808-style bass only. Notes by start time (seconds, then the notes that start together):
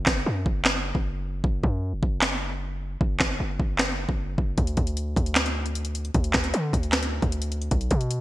0.07 F#1
0.26 F#2
0.46 F#1
0.95 F#1
1.44 F#1
1.64 F#2
1.93 F1
2.03 F#1
3.01 F#1
3.20 F#1
3.40 F#1
3.60 F#1
4.09 F#1
4.38 F#1
4.58 D2
4.77 D2
5.16 D2
6.15 D2
6.34 D2
6.54 D3
6.73 D2
7.22 D2
7.71 B1
7.91 B2